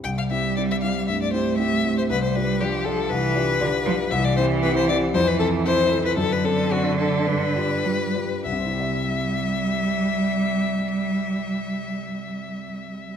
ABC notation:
X:1
M:4/4
L:1/16
Q:1/4=112
K:C
V:1 name="Violin"
g f e2 d e f2 e d c2 e3 c | B c B2 G2 A2 B8 | e d c2 B c d2 c B A2 c3 B | A B A2 ^F2 A2 B8 |
e16- | e16 |]
V:2 name="Grand piano"
C,,2 [CEG]2 [CEG]2 [CEG]2 G,,2 [CEG]2 [CEG]2 [CEG]2 | C,,2 [DFG]2 [DFG]2 [DFG]2 C,,2 [DFG]2 [DFG]2 [DFG]2 | C,,2 [CEG]2 [CEG]2 [CEG]2 F,,2 [CA]2 [CA]2 [CA]2 | ^F,,2 [CDA]2 [CDA]2 [CDA]2 G,,2 [D=FG]2 [DFG]2 [DFG]2 |
[C,,C,CEGe]16- | [C,,C,CEGe]16 |]
V:3 name="Cello" clef=bass
G,8 A,8 | G,4 F,4 E,4 D,2 F,2 | E,8 E,8 | D,12 G,2 z2 |
G,16- | G,16 |]